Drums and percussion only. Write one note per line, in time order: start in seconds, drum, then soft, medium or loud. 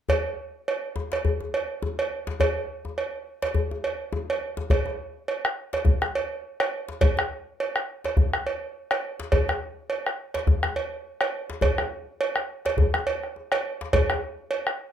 0.09 cowbell medium
0.09 djembe bass medium
0.68 cowbell soft
0.96 djembe tone medium
1.12 cowbell soft
1.12 djembe slap soft
1.25 djembe bass medium
1.41 djembe tone soft
1.54 cowbell soft
1.83 djembe slap soft
1.83 djembe tone medium
1.99 cowbell soft
2.27 djembe slap soft
2.27 djembe tone soft
2.40 cowbell medium
2.40 djembe bass medium
2.85 djembe tone soft
2.98 cowbell soft
3.42 cowbell soft
3.42 djembe slap soft
3.55 djembe bass medium
3.71 djembe tone soft
3.84 cowbell soft
4.13 djembe slap soft
4.13 djembe tone medium
4.30 cowbell soft
4.57 djembe slap soft
4.57 djembe tone soft
4.70 bombo low medium
4.70 cowbell medium
4.70 djembe bass medium
4.86 djembe tone medium
5.28 cowbell soft
5.45 bombo rim medium
5.73 cowbell soft
5.73 djembe slap medium
5.85 bombo low medium
5.85 djembe slap soft
5.85 djembe bass medium
6.02 bombo rim medium
6.02 djembe slap soft
6.02 djembe tone soft
6.15 cowbell soft
6.60 bombo rim medium
6.60 cowbell soft
6.88 djembe slap soft
7.01 bombo low medium
7.01 cowbell medium
7.01 djembe bass medium
7.17 bombo rim medium
7.17 djembe tone soft
7.60 cowbell soft
7.76 bombo rim medium
8.04 cowbell soft
8.04 djembe slap soft
8.17 bombo low medium
8.17 djembe slap soft
8.17 djembe bass medium
8.33 bombo rim medium
8.33 djembe slap soft
8.47 cowbell soft
8.91 bombo rim medium
8.91 cowbell soft
9.20 djembe slap medium
9.32 bombo low medium
9.32 cowbell medium
9.32 djembe bass medium
9.49 bombo rim medium
9.49 djembe tone medium
9.90 cowbell soft
10.06 bombo rim medium
10.34 cowbell soft
10.34 djembe slap medium
10.47 bombo low medium
10.47 djembe slap soft
10.47 djembe bass medium
10.63 bombo rim medium
10.63 djembe tone medium
10.76 cowbell soft
11.21 bombo rim medium
11.21 cowbell soft
11.50 djembe slap medium
11.61 bombo low medium
11.61 cowbell medium
11.61 djembe bass medium
11.78 bombo rim medium
11.78 djembe slap soft
11.78 djembe tone soft
12.21 cowbell soft
12.36 bombo rim medium
12.36 djembe slap soft
12.65 bombo rim soft
12.65 cowbell soft
12.65 djembe slap medium
12.77 bombo low medium
12.77 djembe bass medium
12.94 bombo rim medium
12.94 djembe slap soft
12.94 djembe tone medium
13.07 cowbell soft
13.23 bombo rim soft
13.36 djembe slap soft
13.52 bombo rim medium
13.52 cowbell soft
13.52 djembe slap soft
13.81 djembe slap medium
13.93 bombo low medium
13.93 cowbell medium
13.93 djembe bass medium
14.10 bombo rim medium
14.10 djembe tone medium
14.51 cowbell soft
14.67 bombo rim medium